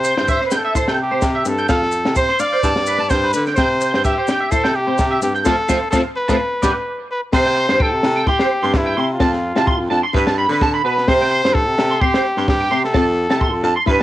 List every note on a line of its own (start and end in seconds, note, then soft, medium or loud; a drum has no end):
0.00 0.14 C3 medium
0.00 0.27 C5 loud
0.00 maracas medium
0.04 0.14 C5 medium
0.17 0.38 G2 medium
0.17 0.37 E4 medium
0.17 0.26 G5 medium
0.17 snare medium
0.28 0.45 C5 medium
0.28 0.38 E5 medium
0.28 kick medium
0.28 maracas medium
0.41 0.49 C5 medium
0.41 snare soft
0.46 0.58 B4 medium
0.51 0.71 D4 medium
0.51 0.61 G5 medium
0.51 snare medium
0.51 maracas medium
0.57 1.01 A4 medium
0.65 0.73 E5 medium
0.75 0.95 E4 medium
0.75 0.85 C5 medium
0.75 kick medium
0.75 maracas medium
0.88 1.19 C3 medium
0.88 0.96 G5 medium
0.88 snare medium
1.02 1.50 G4 medium
1.11 1.31 C4 medium
1.11 1.19 C5 medium
1.21 1.43 C3 loud
1.21 kick medium
1.21 snare medium
1.21 maracas medium
1.35 1.43 E5 medium
1.45 1.67 G2 medium
1.45 1.65 C4 medium
1.45 1.68 A4 medium
1.45 maracas medium
1.58 1.66 G5 medium
1.58 maracas soft
1.68 2.02 F2 medium
1.68 1.89 C4 medium
1.68 2.13 A4 loud
1.68 1.78 F5 medium
1.68 kick medium
1.68 snare medium
1.68 maracas medium
1.82 snare soft
1.91 maracas medium
2.05 2.27 C3 medium
2.05 2.25 E4 medium
2.05 snare medium
2.15 2.26 C5 medium
2.15 2.41 C5 loud
2.15 kick medium
2.15 maracas medium
2.29 2.37 C6 medium
2.29 snare soft
2.39 2.59 D4 medium
2.39 3.11 D5 loud
2.39 2.49 F5 medium
2.39 maracas medium
2.53 2.61 C5 medium
2.63 2.75 G2 loud
2.63 2.83 E4 medium
2.63 2.73 A5 medium
2.63 kick medium
2.63 snare soft
2.63 maracas medium
2.75 3.06 G2 medium
2.75 snare medium
2.86 2.97 B4 medium
2.86 maracas medium
2.98 3.18 D4 medium
2.98 3.07 A5 medium
3.10 3.32 G2 medium
3.10 3.33 C5 loud
3.10 3.20 G5 medium
3.10 kick medium
3.10 snare medium
3.10 maracas medium
3.24 3.31 B4 medium
3.33 3.56 D3 medium
3.33 3.53 D4 medium
3.33 3.44 B4 medium
3.33 maracas medium
3.46 3.55 G5 medium
3.46 snare soft
3.46 maracas soft
3.55 3.90 C3 medium
3.55 3.77 C4 medium
3.55 4.00 C5 loud
3.55 3.67 G5 medium
3.55 kick medium
3.55 snare medium
3.55 maracas medium
3.81 3.90 C5 medium
3.81 maracas medium
3.94 4.15 G2 medium
3.94 4.02 G5 medium
3.94 snare medium
4.04 4.53 G4 medium
4.04 4.14 E5 medium
4.04 kick medium
4.04 maracas medium
4.18 4.26 C5 medium
4.27 4.47 D4 medium
4.27 4.38 G5 medium
4.27 snare medium
4.27 maracas medium
4.41 4.48 E5 medium
4.51 4.71 E4 medium
4.51 4.77 A4 medium
4.51 4.61 C5 medium
4.51 kick medium
4.51 maracas medium
4.64 4.95 C3 medium
4.64 4.72 G5 medium
4.64 snare medium
4.75 5.22 G4 medium
4.87 5.07 C4 medium
4.87 4.95 C5 medium
4.98 5.20 C3 medium
4.98 kick medium
4.98 snare medium
4.98 maracas medium
5.11 5.19 E5 medium
5.21 5.43 G2 medium
5.21 5.41 C4 medium
5.21 5.33 G4 medium
5.21 maracas medium
5.35 5.43 G5 medium
5.35 maracas soft
5.45 5.55 F2 medium
5.45 5.53 A3 medium
5.45 5.53 C4 medium
5.45 5.53 F4 medium
5.45 5.89 A4 loud
5.45 5.54 C5 medium
5.45 5.54 F5 medium
5.45 5.54 A5 medium
5.45 kick medium
5.45 snare medium
5.45 maracas medium
5.68 5.78 F2 medium
5.68 5.77 A3 medium
5.68 5.77 C4 medium
5.68 5.77 F4 medium
5.68 5.77 C5 medium
5.68 5.77 F5 medium
5.68 5.77 A5 medium
5.68 kick medium
5.68 snare medium
5.68 maracas loud
5.91 6.02 F2 medium
5.91 6.01 A3 medium
5.91 6.00 C4 medium
5.91 6.00 F4 medium
5.91 6.02 A4 medium
5.91 6.00 C5 medium
5.91 6.00 F5 medium
5.91 6.00 A5 medium
5.91 kick medium
5.91 snare medium
5.91 maracas medium
6.16 7.06 B4 medium
6.28 6.37 F2 medium
6.28 6.35 A3 medium
6.28 6.35 C4 medium
6.28 6.35 F4 medium
6.28 6.35 C5 medium
6.28 6.35 F5 medium
6.28 6.35 A5 medium
6.28 kick medium
6.28 snare medium
6.28 maracas medium
6.62 6.72 G2 medium
6.62 6.71 B3 medium
6.62 6.71 D4 medium
6.62 6.71 G4 medium
6.62 6.71 B4 medium
6.62 6.71 D5 medium
6.62 6.71 G5 medium
6.62 kick medium
6.62 snare medium
6.62 maracas medium
7.11 7.21 B4 medium
7.32 7.66 C3 loud
7.32 7.52 C4 medium
7.32 7.42 C5 medium
7.32 7.84 C5 loud
7.32 kick medium
7.32 snare medium
7.32 crash medium
7.45 7.53 G5 medium
7.45 snare soft
7.57 7.66 C6 medium
7.69 7.94 G2 medium
7.69 7.77 C5 medium
7.69 snare medium
7.79 8.28 A4 loud
7.79 7.89 G5 medium
7.79 kick loud
7.93 8.02 C3 medium
8.03 8.24 C3 loud
8.03 8.23 E4 medium
8.03 snare medium
8.16 8.24 G5 medium
8.26 8.47 E4 medium
8.26 8.78 G4 loud
8.26 8.36 C6 medium
8.26 kick medium
8.26 snare soft
8.39 8.47 C5 medium
8.39 snare medium
8.63 8.93 G2 medium
8.63 8.83 C4 medium
8.63 8.71 C6 medium
8.74 9.11 E4 medium
8.74 kick medium
8.74 snare medium
8.86 8.94 G5 medium
8.97 9.18 C3 medium
8.97 9.17 C4 medium
8.97 9.06 C6 medium
9.13 10.01 F4 medium
9.20 9.53 F2 loud
9.20 9.40 C4 medium
9.20 9.30 A5 medium
9.20 kick medium
9.20 snare medium
9.34 snare soft
9.55 9.81 C3 medium
9.55 9.76 E4 medium
9.55 9.65 A5 medium
9.55 snare medium
9.67 9.77 C6 medium
9.67 kick medium
9.80 9.89 F2 medium
9.90 10.02 F2 loud
9.90 10.10 D4 medium
9.90 10.00 A5 medium
10.03 10.11 C6 medium
10.13 10.47 G2 loud
10.13 10.33 E4 medium
10.13 10.23 B4 medium
10.13 kick medium
10.13 snare soft
10.27 10.35 A5 medium
10.27 snare medium
10.38 10.47 B5 medium
10.48 10.80 D3 loud
10.48 10.69 D4 medium
10.48 10.58 B4 medium
10.48 snare soft
10.61 10.71 A5 medium
10.61 kick medium
10.61 snare medium
10.74 10.82 B5 medium
10.84 11.05 B2 medium
10.84 11.10 B4 medium
10.84 10.94 B4 medium
10.98 snare soft
11.07 11.40 C3 loud
11.07 11.27 C4 medium
11.07 11.55 C5 loud
11.07 11.18 C5 medium
11.07 kick medium
11.07 snare medium
11.21 11.29 G5 medium
11.21 snare soft
11.31 11.40 C6 medium
11.44 11.68 G2 medium
11.44 11.63 E4 medium
11.44 11.52 C5 medium
11.44 snare medium
11.54 12.02 A4 loud
11.54 kick medium
11.67 11.77 C3 medium
11.77 11.98 C3 loud
11.77 11.98 D4 medium
11.77 snare medium
11.90 11.98 C6 medium
12.01 12.21 C4 medium
12.01 12.48 G4 loud
12.01 12.11 C6 medium
12.01 kick medium
12.14 12.22 C5 medium
12.14 snare medium
12.37 12.68 G2 medium
12.37 12.56 C4 medium
12.37 12.45 C6 medium
12.48 12.82 G4 medium
12.48 kick medium
12.48 snare medium
12.60 12.68 G5 medium
12.71 12.92 C3 medium
12.71 12.90 C4 medium
12.71 12.80 C6 medium
12.84 13.74 A4 medium
12.84 snare soft
12.94 13.27 F2 loud
12.94 13.14 C4 loud
12.94 13.03 A5 medium
12.94 kick medium
12.94 snare medium
13.29 13.53 C3 medium
13.29 13.49 E4 medium
13.29 13.38 A5 medium
13.29 snare medium
13.41 13.50 C6 medium
13.41 kick medium
13.52 13.62 F2 medium
13.63 13.75 F2 loud
13.63 13.83 D4 medium
13.63 13.73 A5 medium
13.76 13.84 C6 medium
13.86 14.03 G2 loud
13.86 14.03 E4 medium
13.86 13.97 B4 medium
13.86 kick medium